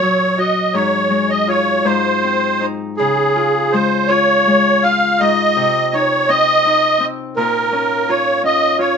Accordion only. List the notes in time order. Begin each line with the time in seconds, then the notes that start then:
Already playing: C#5
0.38 D#5
0.74 C#5
1.30 D#5
1.49 C#5
1.85 C5
2.97 G#4
3.72 C5
4.07 C#5
4.83 F5
5.19 D#5
5.94 C#5
6.29 D#5
7.37 A#4
8.09 C#5
8.45 D#5
8.80 C#5